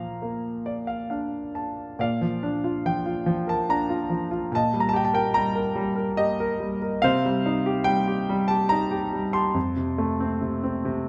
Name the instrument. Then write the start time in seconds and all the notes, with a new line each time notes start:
grand piano
Already playing: A#2 F3 F5 A#5
0.22 A#3
0.66 D5
0.87 F5
1.10 D4 F5
1.55 A5
1.99 A#2 D5 F5
2.21 F3
2.43 D4
2.64 F4
2.86 F3 G5
3.06 F4
3.26 F3
3.47 A#4 A5
3.69 D4 A#5
3.89 F4
4.10 F3
4.31 F4
4.52 A#2 A5
4.56 D#5
4.73 G3
4.80 A#5
4.89 A5
4.93 G4 G5
5.05 A5
5.13 A#4 G5
5.34 G3 A#5
5.55 A#4
5.76 G3
5.96 A#4
6.17 G4 D#5
6.40 A#4
6.60 G3
6.82 A#4
7.02 C3 C5 F5
7.25 G3
7.46 D#4
7.66 G4
7.84 G3 G5
8.08 G4
8.29 G3
8.48 G4 A5
8.69 D#4 A#5
8.91 G4
9.13 G3
9.33 G4 A5 C6
9.54 F2
9.76 C3
9.98 A3
10.20 C4
10.41 C3
10.64 C4
10.85 C3